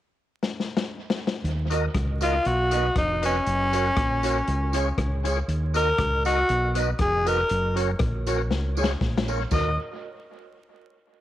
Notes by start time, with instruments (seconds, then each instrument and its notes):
0.43 snare
0.60 snare
0.77 snare
1.10 snare
1.27 snare
1.44 fingered electric bass D#2, closed hi-hat
1.70 tonewheel organ D#4 F#4 A#4 D#5, clean electric guitar F#4 A#4 D#5, closed hi-hat, tambourine
1.94 fingered electric bass C#2, kick, cross-stick, closed hi-hat
2.21 tonewheel organ D#4 F#4 A#4 D#5, tenor saxophone F4, clean electric guitar F#4 A#4 D#5, closed hi-hat, tambourine
2.45 fingered electric bass B1, tenor saxophone F#4, muted clean electric guitar stroke, closed hi-hat
2.71 tonewheel organ D#4 F#4 B4 D#5, clean electric guitar F#4 B4 D#5, closed hi-hat, tambourine
2.95 fingered electric bass F1, tenor saxophone D#4, kick, cross-stick, closed hi-hat
3.22 tenor saxophone C#4, tonewheel organ D#4 F#4 B4 D#5, clean electric guitar F#4 B4 D#5, closed hi-hat, tambourine
3.46 fingered electric bass F#1, closed hi-hat
3.72 tonewheel organ C#4 F#4 A#4 C#5, clean electric guitar F#4 A#4 C#5, closed hi-hat, tambourine
3.97 fingered electric bass A#1, kick, cross-stick, closed hi-hat
4.23 tonewheel organ C#4 F#4 A#4 C#5, clean electric guitar F#4 A#4 C#5, closed hi-hat, tambourine
4.46 fingered electric bass C#2, muted clean electric guitar stroke, closed hi-hat
4.73 tonewheel organ C#4 F4 G#4 C#5, clean electric guitar F4 G#4 C#5, closed hi-hat, tambourine
4.98 fingered electric bass C#2, kick, cross-stick, closed hi-hat
5.23 tonewheel organ C#4 F4 G#4 C#5, clean electric guitar F4 G#4 C#5, closed hi-hat, tambourine
5.48 fingered electric bass D#2, closed hi-hat
5.74 tonewheel organ D#4 F#4 A#4 D#5, clean electric guitar F#4 A#4 D#5, tenor saxophone A#4, closed hi-hat, tambourine
5.98 fingered electric bass C#2, kick, cross-stick, closed hi-hat
6.24 tonewheel organ D#4 F#4 A#4 D#5, clean electric guitar F#4 A#4 D#5, tenor saxophone F#4, closed hi-hat, tambourine
6.49 fingered electric bass B1, muted clean electric guitar stroke, closed hi-hat
6.75 tonewheel organ D#4 F#4 B4 D#5, clean electric guitar F#4 B4 D#5, closed hi-hat, tambourine
6.99 fingered electric bass F1, tenor saxophone G#4, kick, cross-stick, closed hi-hat
7.25 tonewheel organ D#4 F#4 B4 D#5, clean electric guitar F#4 B4 D#5, tenor saxophone A#4, closed hi-hat, tambourine
7.49 fingered electric bass F#1, closed hi-hat
7.76 tonewheel organ C#4 F#4 A#4 C#5, clean electric guitar F#4 A#4 C#5, closed hi-hat, tambourine
7.99 fingered electric bass A#1, kick, cross-stick, closed hi-hat
8.27 tonewheel organ C#4 F#4 A#4 C#5, clean electric guitar F#4 A#4 C#5, closed hi-hat, tambourine
8.51 fingered electric bass C#2, snare
8.77 tonewheel organ C#4 F4 G#4 C#5, clean electric guitar F4 G#4 C#5, tambourine
8.84 snare
9.01 fingered electric bass A#1, kick, snare
9.18 snare
9.28 tonewheel organ C#4 F4 A#4 C#5, clean electric guitar F4 A#4 C#5, tambourine
9.51 fingered electric bass D#2, tonewheel organ D#4 F#4 A#4 D#5, clean electric guitar F#4 A#4 D#5, tenor saxophone D#5, kick, crash, tambourine